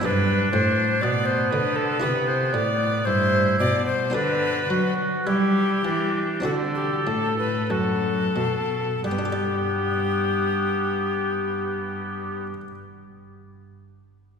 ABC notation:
X:1
M:4/4
L:1/16
Q:1/4=50
K:G
V:1 name="Recorder"
B2 c2 d c B A B c d2 c2 d c | B3 z G4 F G A B A4 | G16 |]
V:2 name="Oboe"
D4 B,8 E2 z2 | D2 F2 E2 D2 A4 F2 z2 | B,16 |]
V:3 name="Harpsichord"
[B,DG]8 [EG]8 | [B,DG]8 [CDF]8 | [G,B,DGd]16 |]
V:4 name="Harpsichord" clef=bass
G,,2 A,,2 B,,2 D,2 C,2 A,,2 G,,2 B,,2 | D,2 F,2 G,2 E,2 D,2 A,,2 F,,2 B,,2 | z16 |]
V:5 name="Cello" clef=bass
G,,2 A,,2 B,,2 D,2 C,2 A,,2 G,,2 B,,2 | D,2 F,2 G,2 E,2 D,2 A,,2 F,,2 B,,2 | G,,16 |]